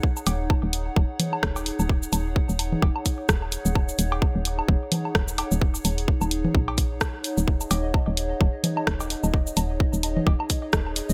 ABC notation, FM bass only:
X:1
M:4/4
L:1/16
Q:"Swing 16ths" 1/4=129
K:Ebm
V:1 name="FM bass" clef=bass
z2 E,,,2 z E,,,2 z E,,, z3 E,,,2 z E,,,- | E,,, z E,,,2 z E,,,2 z E,,, z3 E,,,2 z E,,,- | E,,, z E,,,2 z E,,,2 z E,,, z3 E,,,2 z E,,,- | E,,, z E,,,2 z E,,,2 z B,,,4 D,, z2 E,,,- |
E,,, z E,,,2 z E,,,2 z E,,, z3 E,,,2 z E,,,- | E,,, z E,,,2 z E,,,2 z E,,, z3 E,,,2 z E,,, |]